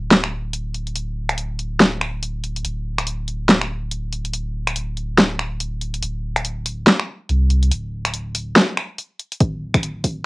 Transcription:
Already playing: D1
0.11 snare, closed hi-hat
0.24 finger snap
0.53 closed hi-hat
0.75 closed hi-hat
0.87 closed hi-hat
0.96 closed hi-hat
1.29 finger snap, closed hi-hat
1.38 closed hi-hat
1.59 closed hi-hat
1.80 snare, closed hi-hat
2.01 finger snap
2.23 closed hi-hat
2.44 closed hi-hat
2.56 closed hi-hat
2.65 D1, closed hi-hat
2.98 finger snap, closed hi-hat
3.07 closed hi-hat
3.28 closed hi-hat
3.49 snare, closed hi-hat
3.61 finger snap
3.91 closed hi-hat
4.12 closed hi-hat
4.25 closed hi-hat
4.33 closed hi-hat
4.67 finger snap, closed hi-hat
4.76 closed hi-hat
4.97 closed hi-hat
5.18 snare, closed hi-hat
5.39 finger snap
5.60 closed hi-hat
5.81 closed hi-hat
5.94 closed hi-hat
6.03 D1, closed hi-hat
6.36 finger snap, closed hi-hat
6.45 closed hi-hat
6.66 open hi-hat
6.87 snare, closed hi-hat
7.00 finger snap
7.29 C2, closed hi-hat
7.50 closed hi-hat
7.63 closed hi-hat
7.71 D1, closed hi-hat
8.05 finger snap, closed hi-hat
8.14 closed hi-hat
8.35 open hi-hat
8.56 snare, closed hi-hat
8.77 finger snap
8.98 closed hi-hat
9.19 closed hi-hat
9.32 closed hi-hat
9.40 D1, kick, closed hi-hat
9.74 finger snap, kick, closed hi-hat
9.83 closed hi-hat
10.04 kick, open hi-hat

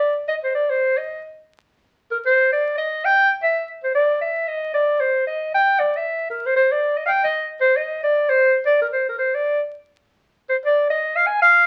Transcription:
Already playing: D5
0.28 D#5
0.44 C5
0.55 D5
0.70 C5
0.97 D#5
2.11 A#4
2.26 C5
2.52 D5
2.78 D#5
3.05 G5
3.43 E5
3.84 C5
3.95 D5
4.21 E5
4.48 D#5
4.74 D5
5.00 C5
5.27 D#5
5.54 G5
5.80 D5
5.97 E5
6.30 A#4
6.46 C5
6.56 C5
6.72 D5
6.98 D#5
7.06 F5 G5
7.24 D#5
7.61 C5
7.76 D#5
8.03 D5
8.29 C5
8.66 D5
8.82 A#4
8.93 C5
9.09 A#4
9.18 C5
9.34 D5
10.49 C5
10.65 D5
10.90 D#5
11.16 F5
11.27 G#5
11.42 F5

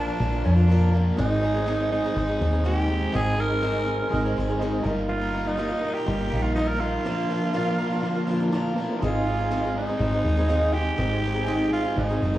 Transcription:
Already playing: F3 A#3 D4 F4 A#4
0.07 A#3 D4 F4
0.19 A#1 A#2 D3 F3 A#3 D4 A#4
0.23 F4
0.32 A#3 D4 F4
0.44 F2 F3 A#3 D4 F4
0.56 A#3 D4 F4
0.69 A#2 F3 A#3 D4 F4 A#4
0.92 F3 A#3 D4 A#4
0.96 D4 F4
1.16 G#1 G#2 D#3 G#3 C4 D#4 G#4 C5 D#5
1.41 G#3 C4 D#4 G#4
1.54 G#3 C4 D#4 G#4
1.65 G#2 D#3 G#3 C4 D#4 G#4 C5 D#5
1.78 G#3 C4 D#4 G#4
1.91 G#3 C4 D#4 G#4
2.05 G#3 C4 D#4 G#4
2.14 G#1 G#2 D#3 G#3 D#4 G#4 C5 D#5
2.18 C4 D#4 G#4
2.28 G#3 C4 D#4 G#4
2.40 D#2 G#3 C4 D#4 G#4
2.52 G#3 C4 D#4 G#4
2.62 G#2 D#3 G#3 C4 D#4 G4 G#4 C5 D#5
2.86 G#3 C4 G#4
2.91 D#4 G#4
3.12 G#1 G#2 D#3 G#3 C4 D#4 G#4 C5 D#5
3.36 G#3 C4 D#4 G#4
3.41 G#4 A#4
3.49 G#3 C4 D#4 G#4
3.62 G#2 D#3 G#3 C4 D#4 G#4 C5 D#5
3.85 G#3 C4 D#4 G#4
3.99 G#3 C4 D#4 G#4
4.09 G#2 D#3 G#3 C4 D#4 G#4 C5 D#5
4.13 G#1 D#4 G#4
4.24 G#3 C4 D#4 G#4
4.36 G#1 G#3 C4 D#4 G#4
4.49 G#3 C4 D#4 G#4
4.59 G#2 D#3 G#3 C4 D#4 G#4 C5 D#5
4.64 G#4
4.83 G1 G3 A#3 D#4 F4 G4 A#4 D#5
4.87 F4
5.08 G3 A#3 D#4 F4 A#4
5.32 G3 A#3 D#4 F4 A#4
5.45 D#4 F4
5.49 A#3
5.57 G3 A#3 D#4 F4 G4 A#4 D#5
5.70 D#4 F4
5.74 A#3
5.81 A#3 D#4 A#4
5.94 D#4 F4 G4
5.99 A#3
6.06 G1 G3 A#3 D#4 F4 G4 A#4 D#5
6.10 F4
6.18 A#3 D#4 F4
6.30 A#1 G3 A#3 D#4
6.34 F4
6.43 A#3 D#4 F4
6.54 G3 A#3 D#4 F4 G4 A#4 D#5
6.59 F4
6.68 A#4
6.80 G3 A#3 D#4 F4 A#4
7.02 A#2 D3 F3 A#3 D4 F4 A#4 D5
7.07 F4 A#4
7.28 F3 A#3 D4 F4 A#4
7.41 A#3 D4 F4
7.53 A#2 F3 A#3 D4 F4 A#4 D5
7.65 A#3 D4 F4
7.78 F3 A#3 D4 A#4
7.90 D4 F4
7.94 A#3
8.02 A#2 D3 F3 A#3 D4 F4 A#4 F5
8.07 F4
8.15 A#3 D4 F4
8.27 F3 A#3 D4 F4
8.40 A#3 D4 F4
8.51 A#2 F3 A#3 D4 F4 A#4 D5
8.55 D4 F4
8.70 A3
8.74 F3 A#3 B3 C4 A#4
8.79 D4 F4
8.83 E4 F4
8.87 G4 A4
8.92 B4 C5
8.98 C4 D#4 G#4 C5 D5
9.02 G#1 G#2 D#3 G#3 C4 D#4 G#4 C5 D#5
9.07 F4
9.26 G#3 C4 D#4 G#4
9.38 G#3 C4 D#4 G#4
9.50 G#2 D#3 G#3 C4 D#4 G#4 C5 D#5
9.63 G#3 C4 D#4 G#4
9.75 G#3 C4 D#4 G#4
9.79 D#4
9.87 G#3 C4 D#4 G#4
9.97 G#1 G#2 D#3 G#3 C4 D#4 G#4 C5 D#5
10.02 D#4 G#4
10.12 G#3 C4 D#4 G#4
10.24 D#2 G#3 C4 D#4 G#4
10.37 G#3 C4 D#4 G#4
10.47 G#2 D#3 G#3 C4 D#4 G#4 C5 F5
10.51 G#4
10.73 G#3 C4 D#4 G4 G#4
10.96 G#1 G#2 D#3 G#3 C4 D#4 G#4 C5 D#5
11.22 G#3 C4 D#4 G#4
11.26 G#4
11.34 G#3 C4 D#4 G#4
11.47 G#2 D#3 G#3 C4 D#4 G#4 C5 D#5
11.70 G#3 C4 D#4 F4 G#4
11.84 G#3 C4 D#4 G#4
11.95 G#1 G#2 D#3 G#3 C4 D#4 G#4 C5 D#5
11.99 D#4 G#4
12.09 G#3 C4 D#4 G#4
12.22 F#1 G#3 C4 D#4 G#4
12.34 D#4 G#4

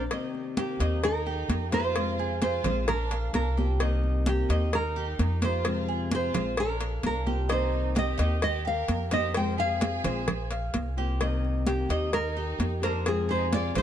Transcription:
0.11 C3 D#3 A#3 C4 D#4 G4, cowbell, high conga
0.35 high conga
0.57 A#3 G4, cowbell, high conga
0.79 D#2 D#3 A#3 C4 D#4 G4, cowbell, high conga
1.03 D#4 A#4, muted nylon-string guitar stroke, cowbell, high conga
1.26 G4, high conga
1.49 F2, cowbell, high conga
1.72 A#3 D#4 F4 G4 C5, cowbell, high conga
1.95 C3 F3 G#3 C4 F4, cowbell, high conga
2.19 G#4, high conga
2.42 F4 C5, cowbell, high conga
2.64 A#1 F3 G#3 C4 F4 C5, cowbell, low conga
2.88 D4 A#4, muted nylon-string guitar stroke, cowbell, high conga, low conga
3.11 F5, cowbell, high conga
3.33 C2 D4 A#4, cowbell, high conga
3.57 A#3 C4 F4 G4, high conga
3.80 C3 D#3 A#3 C4 D#4 G4, cowbell, high conga
4.04 high conga
4.26 A#3 G4, cowbell, high conga
4.49 D#2 D#3 A#3 C4 D#4 G4, cowbell, high conga
4.73 D#4 A#4, muted nylon-string guitar stroke, cowbell, high conga
4.96 G4, high conga
5.19 F2, cowbell, high conga
5.42 A#3 D#4 F4 G4 C5, cowbell, high conga
5.65 C3 F3 G#3 C4 F4, cowbell, high conga
5.88 G#4, high conga
6.11 F4 C5, cowbell, high conga
6.34 A#1 F3 G#3 C4 F4 C5, cowbell, low conga
6.57 D4 A#4, muted nylon-string guitar stroke, cowbell, high conga
6.80 F5, cowbell, high conga
7.03 C2 D4 A#4, cowbell, high conga
7.26 A#3 C4 F4 G4, high conga
7.49 C3 D#3 A#3 C4 D#4 G4 C5, cowbell, high conga
7.73 high conga
7.95 G4 D#5, cowbell, high conga
8.18 D#2 D#3 A#3 C4 D#4 G4, cowbell, high conga
8.42 G4 D#5, muted nylon-string guitar stroke, cowbell, high conga
8.65 G4 A#4 F5, high conga
8.88 F2, cowbell, high conga
9.11 A#3 D#4 G4 C5 D#5, cowbell, high conga
9.34 C3 F3 G#3 C4 F4 C5 G5, cowbell, high conga
9.58 G#4 F5, high conga
9.81 cowbell, high conga
10.04 A#1 F3 G#3 C4 F4 C5, cowbell, low conga
10.28 muted nylon-string guitar stroke, cowbell, high conga, low conga
10.51 F5, cowbell, high conga
10.74 C2, cowbell, high conga
10.97 A#3 C4 F4 G4
11.20 C3 D#3 A#3 C4 D#4 G4, cowbell, high conga
11.44 high conga
11.67 A#3 G4, cowbell, high conga
11.89 D#2 D#3 A#3 C4 D#4 G4, cowbell, high conga
12.13 D#4 A#4, muted nylon-string guitar stroke, cowbell, high conga
12.37 G4, high conga
12.59 F2, cowbell, high conga
12.82 A#3 D4 D#4 G4 A#4 C5, cowbell
13.05 C3 F3 G#3 C4 F4 G#4, cowbell, high conga
13.29 D#4 G#4 C5, high conga
13.53 F4 D5, cowbell, high conga
13.75 A#1 F3 G#3 C4 F4 C5, cowbell, low conga

